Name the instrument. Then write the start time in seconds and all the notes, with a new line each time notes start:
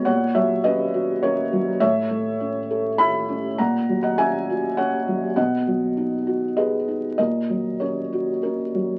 felt piano
0.05 A#2 C#5 F#5
0.35 F#3 C#5 E5
0.64 C#4 B4 D#5
0.94 F#4
1.23 C#4 A#4 C#5
1.53 F#3
1.80 A2 C#5 E5
2.10 A3
2.40 C#4
2.71 A4
2.98 E4 E5 B5
3.29 C#4
3.58 A#2 F#5 A#5
3.89 F#3
4.03 D#5 F#5
4.18 C#4 E5 G#5
4.50 F#4
4.77 C#4 C#5 F#5
5.08 F#3
5.36 B2 D#5 F#5
5.67 F#3
5.97 D#4
6.27 F#4
6.57 G#4 B4 D#5
6.88 D#4
7.18 A#2 A#4 D#5
7.50 F#3
7.80 C#4 A#4 C#5
8.13 F#4
8.43 C#4 A#4
8.74 F#3